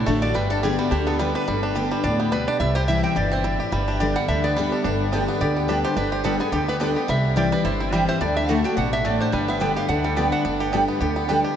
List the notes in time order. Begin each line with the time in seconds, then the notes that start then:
Already playing: A2 D4
0.06 A1 D3 A3 D4 F#4 A4
0.22 D4 D5
0.34 G1 G2 G3 B4
0.50 D4 A4
0.63 D3 G3 B3 G4 G#4
0.79 G3 F#4
0.91 D2 D3 D4 G4
1.07 B3 A4
1.19 D3 G3 B3 G4 B4
1.35 D4 B4
1.47 G1 G2 G3
1.63 D4
1.75 D3 G3 B3 G4
1.91 G3
2.03 D2 A2 D4 D5
2.19 B3 G4
2.32 B2 G3 B4
2.48 D4 D5
2.60 C2 C3 E4 E5
2.75 G4 C5
2.88 E3 G3 C4 E4 E5
3.04 C4 G5
3.16 G1 B2 G4 D5
3.32 C4 C5
3.44 A2 E4
3.60 G4
3.72 G1 G2 G3
3.88 D4
4.00 D3 G3 B3 G4 D5
4.16 G3 F#5
4.28 D2 D3 D4 E5
4.44 B3 D5
4.57 D3 G3 B3 G4
4.72 D4
4.84 G1 G2 D4
5.12 D3 G3 B3 D4 G4 D5 G5
5.28 B3
5.40 D2 D3 G4 D5
5.57 B3
5.68 D3 G3 B3 D4 G4 D5 G5
5.84 G4 C5
5.96 G1 G2 D4 B4
6.12 G4 C5
6.24 D3 G3 B3 D4 G4 A4 D5 G5
6.39 B3 G4 G#4
6.52 D2 D3 G4
6.68 B3 B4
6.80 D3 G3 B3 D4 G4 D5 G5
6.95 B3 G4
7.08 C2 C3 G3 E5
7.36 E3 G3 C4 E4 G4 C5 D5 G5
7.52 G3 B4
7.64 G1 G2 E4 C5
7.80 C4 E4
7.92 E3 G3 C4 E4 G4 C5 G5
8.09 E4 C5
8.21 D2 D3 D4 D5
8.37 D4 E5
8.48 D3 A3 D4 F#4 D5 F#5 A5
8.64 D4 F#4 G5
8.77 A1 B2 D4 F#5
8.93 D4 E5
9.05 A2 A3 F#4 D5 A5
9.21 D4 C5
9.32 G1 G2 G3 B4
9.48 B3 E5
9.60 D3 G3 B3 D4 G4 D5 G5
9.77 G4 F5
9.88 D2 D3 D4 F#5
10.04 G3 A4
10.16 D3 G3 B3 G4 D5 G5
10.32 D4 F#5
10.45 G1 G2 D4
10.60 G4
10.72 D3 G3 B3 D4 G4 D5 G5
10.88 B3
11.00 D2 D3 G4
11.16 B3
11.28 D3 G3 B3 D4 G4 D5 G5
11.44 G4